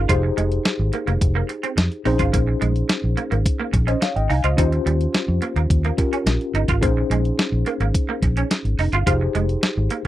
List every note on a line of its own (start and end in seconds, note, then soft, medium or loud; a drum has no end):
0.08 0.29 F1 loud
0.08 2.01 D#4 medium
0.08 0.19 F4 medium
0.08 2.02 G4 medium
0.08 2.02 G#4 medium
0.08 2.02 C5 medium
0.08 kick loud
0.08 closed hi-hat loud
0.23 muted clean electric guitar stroke soft
0.37 0.57 F1 medium
0.37 0.47 G#3 medium
0.37 closed hi-hat medium
0.52 closed hi-hat soft
0.65 muted clean electric guitar stroke soft
0.65 snare loud
0.65 closed hi-hat medium
0.79 0.89 G#1 medium
0.93 1.03 A#3 medium
0.93 closed hi-hat medium
1.07 1.17 F1 loud
1.07 1.17 A#3 medium
1.07 closed hi-hat soft
1.21 1.41 F1 loud
1.21 kick loud
1.21 closed hi-hat loud
1.35 1.45 A#3 medium
1.49 muted clean electric guitar stroke soft
1.49 closed hi-hat medium
1.63 1.73 C4 medium
1.63 closed hi-hat soft
1.77 1.87 F2 medium
1.77 muted clean electric guitar stroke soft
1.77 snare loud
1.77 closed hi-hat medium
1.92 closed hi-hat soft
2.05 2.15 A#1 medium
2.05 2.12 C4 medium
2.05 2.15 D#4 medium
2.05 4.26 D#4 medium
2.05 4.26 G#4 medium
2.05 3.71 C5 medium
2.05 open hi-hat medium
2.12 4.29 C#4 medium
2.19 2.29 G#1 medium
2.19 2.29 F4 medium
2.19 kick medium
2.19 closed hi-hat medium
2.33 2.53 A#1 medium
2.33 2.43 A#3 medium
2.33 kick loud
2.33 closed hi-hat loud
2.47 muted clean electric guitar stroke soft
2.61 2.81 A#1 medium
2.61 2.71 G#3 medium
2.61 closed hi-hat medium
2.76 closed hi-hat soft
2.89 muted clean electric guitar stroke soft
2.89 snare loud
2.89 closed hi-hat medium
3.04 3.14 A#1 medium
3.17 3.27 A#3 medium
3.17 closed hi-hat medium
3.31 3.42 G#1 medium
3.31 3.41 A#3 medium
3.31 closed hi-hat soft
3.46 kick loud
3.46 closed hi-hat loud
3.60 3.69 A#3 medium
3.73 3.93 A#1 loud
3.73 muted clean electric guitar stroke soft
3.73 kick loud
3.73 closed hi-hat medium
3.87 3.97 C#4 medium
3.87 4.02 C5 medium
3.87 4.01 D#5 medium
3.87 closed hi-hat medium
4.01 4.16 C#5 medium
4.01 4.15 F5 medium
4.01 muted clean electric guitar stroke soft
4.01 snare loud
4.01 closed hi-hat medium
4.16 4.26 G#1 medium
4.16 4.30 D#5 medium
4.16 4.29 G5 medium
4.16 closed hi-hat soft
4.30 4.40 C2 medium
4.30 4.39 D#4 medium
4.30 4.43 F5 medium
4.30 4.43 G#5 medium
4.30 open hi-hat medium
4.44 4.54 C#2 medium
4.44 4.54 F4 medium
4.44 4.57 C5 medium
4.44 4.71 D#5 medium
4.44 closed hi-hat medium
4.57 4.78 D#2 loud
4.57 5.95 C#4 medium
4.57 4.68 D#4 medium
4.57 5.95 F4 medium
4.57 5.95 G4 medium
4.57 5.96 C5 medium
4.57 kick loud
4.57 closed hi-hat loud
4.72 muted clean electric guitar stroke soft
4.72 closed hi-hat soft
4.86 5.06 D#2 loud
4.86 4.96 G3 medium
4.86 closed hi-hat medium
5.01 closed hi-hat soft
5.14 muted clean electric guitar stroke soft
5.14 snare loud
5.14 closed hi-hat medium
5.28 5.38 F2 medium
5.42 5.52 A#3 medium
5.42 closed hi-hat medium
5.56 5.66 D#2 loud
5.56 5.66 A#3 medium
5.56 closed hi-hat soft
5.70 5.90 D#2 medium
5.70 kick loud
5.70 closed hi-hat loud
5.85 5.94 A#3 medium
5.85 closed hi-hat soft
5.97 6.80 C#4 medium
5.97 6.82 F4 medium
5.97 6.82 G4 soft
5.97 6.82 A#4 medium
5.97 muted clean electric guitar stroke soft
5.97 kick loud
5.97 closed hi-hat medium
6.13 6.22 C#4 medium
6.13 closed hi-hat soft
6.26 6.36 A#1 medium
6.26 muted clean electric guitar stroke soft
6.26 snare loud
6.26 closed hi-hat medium
6.41 closed hi-hat soft
6.54 6.64 G1 medium
6.54 6.64 D#4 medium
6.54 closed hi-hat medium
6.68 6.82 G#1 medium
6.68 6.79 F4 medium
6.68 kick medium
6.68 closed hi-hat medium
6.81 7.02 A#1 loud
6.81 6.92 A#3 medium
6.81 9.02 C#4 medium
6.81 9.02 D#4 medium
6.81 9.02 G#4 medium
6.81 9.03 C5 medium
6.81 kick loud
6.81 closed hi-hat loud
6.97 muted clean electric guitar stroke soft
7.10 7.30 A#1 medium
7.10 7.21 G#3 medium
7.10 closed hi-hat medium
7.25 closed hi-hat soft
7.39 muted clean electric guitar stroke soft
7.39 snare loud
7.39 closed hi-hat medium
7.52 7.62 A#1 medium
7.66 7.76 A#3 medium
7.66 closed hi-hat medium
7.80 7.90 G#1 medium
7.80 7.90 A#3 medium
7.80 closed hi-hat soft
7.95 kick loud
7.95 closed hi-hat loud
8.09 8.18 A#3 medium
8.22 8.42 A#1 medium
8.22 muted clean electric guitar stroke soft
8.22 kick medium
8.22 closed hi-hat medium
8.37 8.47 C#4 medium
8.37 closed hi-hat medium
8.51 muted clean electric guitar stroke soft
8.51 snare loud
8.51 closed hi-hat loud
8.65 8.74 G#1 medium
8.65 closed hi-hat soft
8.79 8.88 F1 medium
8.79 8.89 D#4 medium
8.79 open hi-hat medium
8.93 9.02 G1 medium
8.93 9.03 F4 medium
8.93 closed hi-hat medium
9.06 9.26 F1 loud
9.06 10.07 D#4 medium
9.06 9.17 F4 medium
9.06 10.07 G4 medium
9.06 10.07 G#4 medium
9.06 10.07 C5 medium
9.06 kick loud
9.06 closed hi-hat loud
9.21 muted clean electric guitar stroke soft
9.35 9.54 F1 medium
9.35 9.44 G#3 medium
9.35 closed hi-hat medium
9.49 closed hi-hat soft
9.63 muted clean electric guitar stroke soft
9.63 snare loud
9.63 closed hi-hat medium
9.77 9.87 G#1 medium
9.90 10.01 A#3 medium
9.90 closed hi-hat medium